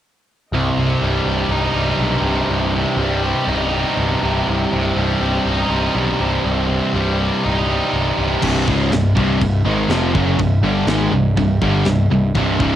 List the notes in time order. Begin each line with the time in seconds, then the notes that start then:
0.52 C1 C2 C4 G4 D#5 G5
0.77 C1 C3
1.01 C1 G2 G3
1.25 C1 C3 G3
1.49 C1 D#4
1.74 C1 G3
1.78 C3
1.98 B1 G2
2.22 C1 C3
2.48 C1 C2
2.75 C3
2.97 C1 G2 G3
3.23 C3 G3
3.47 C1 D#4
3.72 C3 G3
3.97 C1 G2
4.23 C1 C3
4.47 C1 C2
4.72 C1 C3
4.96 C1 G2 G3
5.20 C1 C3 G3
5.45 C1 D#4
5.69 C1 C3 G3
5.95 B1 G2
6.20 C1 C3
6.44 C1 C2
6.70 C3
6.94 C1 G2 G3
7.19 C3 G3
7.45 C1 D#4
7.68 C3 G3
7.93 C1 G2
8.18 C1 C3
8.42 C1 C2 G2 C3, kick, crash, china
8.67 C#1 C#2 G#2 C#3, kick
8.92 C1 C2 G2, snare, china
9.16 C1 C2 G2 C3, kick
9.41 C1 C2 G2, kick, china
9.65 G#1 G#2 D#3 G#3
9.88 F1 F2 C3 F3, snare, china
10.15 F#1 F#2 C#3 F#3, kick
10.39 C1 C2 G2, kick, china
10.62 G1 G2 D3 G3
10.85 G#1 G#2 D#3 G#3, snare, china
11.11 C1 C2 G2
11.37 C1 C2 G2, kick, china
11.61 G1 G2 D3 G3, kick
11.84 C1 C2 G2, snare, china
12.10 C1 C2 G2
12.35 C1 C2 G2 C3, kick, china
12.59 C#1 C#2 G#2 C#3, kick